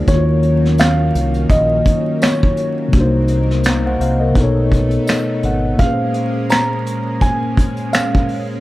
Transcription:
Already playing: A#3
0.06 D#2 D#3 F#3 A#3 C#4 C#5, kick, closed hi-hat
0.12 F4 F#4
0.19 C5
0.25 C#5
0.43 closed hi-hat
0.65 snare
0.78 F5, finger snap, snare, closed hi-hat, tambourine
1.15 C2, closed hi-hat
1.34 closed hi-hat
1.50 A#1 D#5, kick, closed hi-hat
1.86 kick, closed hi-hat
2.22 C#5, finger snap, snare, closed hi-hat, tambourine
2.43 kick
2.57 closed hi-hat
2.88 C3 A#3
2.93 C2 C3 A#3 D4 D#4, kick, closed hi-hat
2.97 D#4 F#4 C5
3.28 closed hi-hat
3.51 snare
3.63 A#5, finger snap, snare, closed hi-hat, tambourine
3.67 F5
3.86 C5 F#5
4.00 C2 C5 F5, closed hi-hat
4.20 A#4 D#5
4.31 B2 B3
4.35 B1 A3 B3 D#4, kick, closed hi-hat
4.40 A4 C#5
4.72 kick, closed hi-hat
4.91 closed hi-hat
5.07 D#5, finger snap, snare, closed hi-hat, tambourine
5.43 G#1 F#5, closed hi-hat
5.74 A#2 A#3
5.79 G#3 A#3 C#4 F5, kick, closed hi-hat
5.83 G#4 B4
5.93 C5
6.14 closed hi-hat
6.49 A#5, finger snap, snare, closed hi-hat, tambourine
6.87 closed hi-hat
7.21 G#5, kick, closed hi-hat
7.57 kick, closed hi-hat
7.76 closed hi-hat
7.93 F5, finger snap, snare, closed hi-hat, tambourine
8.15 kick
8.29 open hi-hat

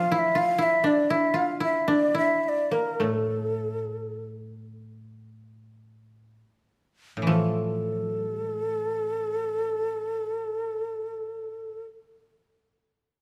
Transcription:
Already playing: E3 F3 F4 F5
0.12 E4 F5
0.18 E5
0.35 F4 F5
0.58 E4 E5
0.84 D4 D5
1.10 E4 E5
1.34 F4 F5
1.60 E4 E5
1.88 D4 D5
2.15 E4 E5
2.44 E5
2.48 D5
2.71 A#3 A#4
3.00 A2 A3 A#4
3.14 A4
7.17 A2
7.22 E3
7.27 F3 A3 A4
7.95 F#3
8.21 G3
8.48 G#3
8.74 A3

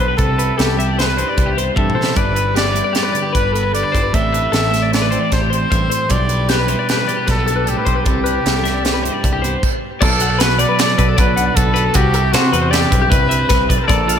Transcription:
Already playing: B2 G3 D4 E4 G4 B4
0.00 B1
0.08 B4
0.17 C2 C3 A4, kick, closed hi-hat
0.38 E4 B4, closed hi-hat
0.58 C2 B3 G4 A4, snare, closed hi-hat
0.76 G3 D4 E5, closed hi-hat
0.87 E4 D5
0.99 B4 C5, snare, closed hi-hat
1.08 B4
1.16 G2 E4 C5, closed hi-hat
1.28 D5
1.37 C2 E4, kick, closed hi-hat
1.46 G4
1.56 B3 C5, closed hi-hat
1.75 G2 C3 A4 E5, kick, high tom
1.90 mid tom
1.95 E4 C5
2.04 snare
2.15 G1 G2 B4 D5, kick, closed hi-hat
2.35 E4 B4, closed hi-hat
2.54 B3 G4 D5, snare, closed hi-hat
2.64 B4
2.73 G3 E4 C5, closed hi-hat
2.84 D5
2.93 G4 D5, snare, closed hi-hat
3.03 B4
3.13 D3 B4 D5, closed hi-hat
3.22 G4
3.33 G1 D4 B4, kick, closed hi-hat
3.44 E4
3.52 B3 A4 B4, closed hi-hat
3.63 B4
3.73 G2 A4 D5, closed hi-hat
3.83 B4
3.92 G1 E4 C5, kick, closed hi-hat
4.03 B4
4.13 A1 A2 A3 C4 E4 G4 A4 E5, kick, closed hi-hat
4.33 D4 B4, closed hi-hat
4.42 E4
4.52 A1 C4 A4 E5, snare, closed hi-hat
4.71 A3 E4 E5, snare, closed hi-hat
4.82 D5
4.92 C5 D5, snare, closed hi-hat
5.02 B4
5.11 E3 G4 C5, closed hi-hat
5.21 D5
5.31 A1 D4 C5, kick, snare, closed hi-hat
5.40 E4 G4
5.50 C4 C5, closed hi-hat
5.70 A1 G2 E5, kick, closed hi-hat
5.89 A2 C5, closed hi-hat
6.08 B1 B2 G3 D4 E4 G4 D5, kick, closed hi-hat
6.29 E4 B4, closed hi-hat
6.49 G4 B4, snare, closed hi-hat
6.59 B4
6.68 G3 E4 C5, closed hi-hat
6.79 D5
6.89 G4 B4, snare, closed hi-hat
6.98 B4
7.07 B2 G4 D5, closed hi-hat
7.17 G4
7.27 B1 D4 A4 B4, kick, snare, closed hi-hat
7.38 E4
7.46 D4 A4, closed hi-hat
7.56 B4
7.66 A2 G4 A4, closed hi-hat
7.77 B4
7.85 B1 B2 C5, kick, closed hi-hat
7.95 B4
8.04 C2 C3 G4 A4, kick, closed hi-hat
8.24 D4 B4, closed hi-hat
8.35 E4
8.45 C2 B3 A4, snare, closed hi-hat
8.64 G3 D4 E5, snare, closed hi-hat
8.74 E4 D5
8.84 C5, snare, closed hi-hat
8.94 B4
9.03 G2 E4 C5, closed hi-hat
9.12 D5
9.24 C2 D4, kick, closed hi-hat
9.32 E4 G4
9.42 B3 C5, closed hi-hat
9.63 kick, crash
10.01 B1 B2 F#4 A4 D5, kick, crash
10.20 F#4 F#5, closed hi-hat
10.30 D5
10.39 B4, snare, closed hi-hat
10.58 F#3 D5, closed hi-hat
10.69 B4
10.79 F#4 D5, snare, closed hi-hat
10.97 B1 B2 A4 B4, kick, closed hi-hat
11.09 A4
11.17 B1 F#4 B4 D5, kick, closed hi-hat
11.36 D4 F#5, closed hi-hat
11.46 D5
11.54 B1 B2 F#4 A4 B4, kick, closed hi-hat
11.74 F#4 B4, closed hi-hat
11.85 A4
11.94 C2 C3 E4 F#4 G4, kick, closed hi-hat
12.13 E4 A4, closed hi-hat
12.24 G4
12.32 C3 F#4 C5, snare, closed hi-hat
12.52 E2 C4 B4, closed hi-hat
12.62 C5
12.71 E4 G4 D5, snare, closed hi-hat
12.90 B1 G2 E4 B4, kick, closed hi-hat
13.02 G4
13.10 C2 E4 B4, kick, closed hi-hat
13.29 E4 E5, closed hi-hat
13.39 C5
13.49 C2 C3 E4 B4, kick, snare, closed hi-hat
13.69 B1 B4 D5, kick, closed hi-hat
13.78 C5
13.83 A4 A#4
13.88 A#1 A#2 F4 D5, kick, closed hi-hat
14.08 F4 F5, closed hi-hat

